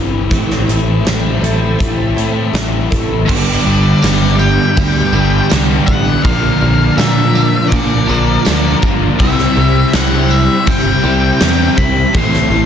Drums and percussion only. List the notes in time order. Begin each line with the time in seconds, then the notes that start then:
0.31 kick, closed hi-hat
0.50 snare
0.69 closed hi-hat
1.07 snare, closed hi-hat
1.44 closed hi-hat
1.80 kick, closed hi-hat
2.18 closed hi-hat
2.55 snare, closed hi-hat
2.92 kick, closed hi-hat
3.29 kick, crash
3.65 tambourine
4.02 snare, tambourine, crash
4.39 tambourine
4.77 kick, tambourine, crash
5.13 tambourine
5.49 snare, tambourine, crash
5.87 kick, tambourine
6.25 kick, crash
6.61 tambourine
6.98 snare, tambourine, crash
7.35 tambourine
7.71 kick, tambourine, crash
8.09 tambourine
8.45 snare, tambourine, crash
8.82 kick, tambourine
9.20 kick, crash
9.38 snare
9.56 tambourine
9.93 snare, tambourine, crash
10.30 tambourine
10.66 kick, tambourine, crash
11.41 snare, tambourine, crash
11.78 kick, tambourine
12.14 kick, tambourine, crash
12.33 snare
12.52 tambourine